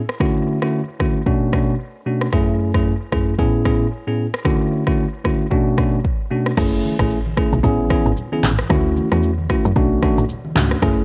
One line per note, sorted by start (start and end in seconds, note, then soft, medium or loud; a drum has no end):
0.09 cross-stick medium
0.20 0.58 D3 medium
0.20 0.59 A3 medium
0.20 0.59 C#4 medium
0.20 0.59 E4 medium
0.20 0.59 F#4 loud
0.20 kick loud
0.20 cross-stick loud
0.62 0.80 D3 medium
0.62 0.80 A3 medium
0.62 0.81 C#4 medium
0.62 0.81 E4 medium
0.62 0.81 F#4 medium
0.62 cross-stick medium
1.00 1.20 D3 medium
1.00 1.20 A3 medium
1.00 1.20 C#4 medium
1.00 1.21 E4 medium
1.00 1.21 F#4 medium
1.00 kick medium
1.00 cross-stick medium
1.26 1.51 B2 medium
1.26 1.51 A3 medium
1.26 1.51 C#4 medium
1.26 1.51 D4 medium
1.26 1.51 F#4 loud
1.26 kick medium
1.53 1.73 B2 medium
1.53 1.74 A3 medium
1.53 1.74 C#4 medium
1.53 1.74 D4 medium
1.53 1.74 F#4 medium
1.53 kick medium
1.53 cross-stick medium
2.06 2.27 B2 medium
2.06 2.27 A3 medium
2.06 2.27 C#4 medium
2.06 2.27 D4 medium
2.06 2.27 F#4 medium
2.21 cross-stick medium
2.33 2.71 F#2 medium
2.33 2.71 A3 medium
2.33 2.71 C#4 medium
2.33 2.71 E4 medium
2.33 2.71 G#4 loud
2.33 kick loud
2.33 cross-stick medium
2.74 2.93 F#2 medium
2.74 2.93 A3 medium
2.74 2.93 C#4 medium
2.74 2.93 E4 medium
2.74 2.93 G#4 medium
2.74 kick medium
2.74 cross-stick medium
3.12 3.33 F#2 medium
3.12 3.33 A3 medium
3.12 3.33 C#4 medium
3.12 3.33 E4 medium
3.12 3.33 G#4 medium
3.12 kick medium
3.12 cross-stick medium
3.39 3.63 A2 medium
3.39 3.64 B3 medium
3.39 3.64 C#4 medium
3.39 3.64 E4 medium
3.39 3.64 G#4 loud
3.39 kick loud
3.65 3.86 A2 medium
3.65 3.86 B3 medium
3.65 3.86 C#4 medium
3.65 3.86 E4 medium
3.65 3.86 G#4 medium
3.65 kick medium
3.65 cross-stick medium
4.07 4.26 A2 medium
4.07 4.26 B3 medium
4.07 4.26 C#4 medium
4.07 4.26 E4 medium
4.07 4.26 G#4 medium
4.34 cross-stick medium
4.45 4.83 D3 medium
4.45 4.83 A3 medium
4.45 4.83 C#4 medium
4.45 4.83 E4 medium
4.45 4.83 F#4 loud
4.45 kick loud
4.45 cross-stick loud
4.87 5.05 D3 medium
4.87 5.05 A3 medium
4.87 5.05 C#4 medium
4.87 5.05 E4 medium
4.87 5.06 F#4 medium
4.87 kick medium
4.87 cross-stick medium
5.24 5.45 D3 medium
5.24 5.45 A3 medium
5.24 5.45 C#4 medium
5.24 5.45 E4 medium
5.24 5.45 F#4 medium
5.24 kick medium
5.24 cross-stick medium
5.51 5.76 B2 medium
5.51 5.76 A3 medium
5.51 5.76 C#4 medium
5.51 5.76 D4 medium
5.51 5.76 F#4 loud
5.51 kick medium
5.77 5.98 B2 medium
5.77 5.98 A3 medium
5.77 5.98 C#4 medium
5.77 5.98 D4 medium
5.77 5.98 F#4 medium
5.77 kick medium
5.77 cross-stick medium
6.05 kick medium
6.31 6.51 B2 medium
6.31 6.51 A3 medium
6.31 6.52 C#4 medium
6.31 6.52 D4 medium
6.31 6.52 F#4 medium
6.46 cross-stick medium
6.57 6.88 F#1 loud
6.57 6.96 A3 medium
6.57 6.96 C#4 medium
6.57 6.96 E4 medium
6.57 6.96 G#4 loud
6.57 kick loud
6.57 cross-stick loud
6.57 crash loud
6.57 shaker medium
6.84 high conga medium
6.84 shaker medium
6.99 7.37 A1 medium
6.99 7.18 A3 medium
6.99 7.18 C#4 medium
6.99 7.18 E4 medium
6.99 7.18 G#4 medium
6.99 kick medium
6.99 cross-stick medium
6.99 shaker medium
7.10 shaker medium
7.26 high conga medium
7.37 7.58 A3 medium
7.37 7.58 C#4 medium
7.37 7.58 E4 medium
7.37 7.58 G#4 medium
7.37 kick loud
7.37 cross-stick medium
7.37 high conga medium
7.37 shaker medium
7.53 7.61 B1 medium
7.53 shaker medium
7.63 7.94 A1 loud
7.63 7.88 B3 medium
7.63 7.88 C#4 medium
7.63 7.88 E4 medium
7.63 7.89 G#4 loud
7.63 kick medium
7.63 low conga medium
7.63 shaker medium
7.80 high conga medium
7.90 8.11 B3 medium
7.90 8.11 C#4 medium
7.90 8.11 E4 medium
7.90 8.11 G#4 medium
7.90 kick medium
7.90 cross-stick medium
7.90 high conga medium
7.90 shaker soft
8.06 8.14 G#1 medium
8.06 shaker medium
8.16 low conga medium
8.16 shaker medium
8.32 8.51 B3 medium
8.32 8.51 C#4 medium
8.32 8.51 E4 medium
8.32 8.51 G#4 medium
8.32 high conga medium
8.43 8.62 A1 medium
8.43 clap loud
8.43 mid tom medium
8.43 high conga medium
8.43 low conga medium
8.43 shaker medium
8.59 cross-stick medium
8.59 shaker medium
8.70 9.00 D2 loud
8.70 9.08 A3 medium
8.70 9.08 C#4 medium
8.70 9.08 E4 medium
8.70 9.08 F#4 loud
8.70 kick loud
8.70 cross-stick loud
8.70 shaker medium
8.96 high conga medium
8.96 shaker soft
9.12 9.50 E2 medium
9.12 9.30 A3 medium
9.12 9.30 C#4 medium
9.12 9.30 E4 medium
9.12 9.30 F#4 medium
9.12 cross-stick medium
9.12 shaker medium
9.23 shaker medium
9.38 high conga medium
9.49 9.70 A3 medium
9.49 9.70 C#4 medium
9.49 9.70 E4 medium
9.49 9.70 F#4 medium
9.49 kick medium
9.49 cross-stick medium
9.49 high conga medium
9.49 shaker medium
9.65 9.73 F#2 medium
9.65 shaker medium
9.76 10.06 B1 loud
9.76 10.01 A3 loud
9.76 10.01 C#4 medium
9.76 10.01 D4 medium
9.76 10.01 F#4 loud
9.76 kick loud
9.76 low conga medium
9.76 shaker medium
9.93 high conga medium
10.03 10.23 A3 medium
10.03 10.23 C#4 medium
10.03 10.23 D4 medium
10.03 10.24 F#4 medium
10.03 kick medium
10.03 cross-stick medium
10.03 high conga medium
10.03 shaker medium
10.18 10.26 A1 medium
10.18 shaker medium
10.29 low conga medium
10.29 shaker medium
10.45 high conga medium
10.55 10.75 C#2 loud
10.55 10.76 A3 medium
10.55 10.76 C#4 medium
10.55 10.76 D4 medium
10.55 10.76 F#4 medium
10.55 clap loud
10.55 mid tom medium
10.55 high conga medium
10.55 low conga medium
10.55 shaker medium
10.71 cross-stick loud
10.71 shaker medium
10.82 11.04 F#1 loud
10.82 11.04 A3 medium
10.82 11.04 C#4 medium
10.82 11.04 E4 medium
10.82 11.04 G#4 loud
10.82 kick loud
10.82 cross-stick loud
10.82 shaker medium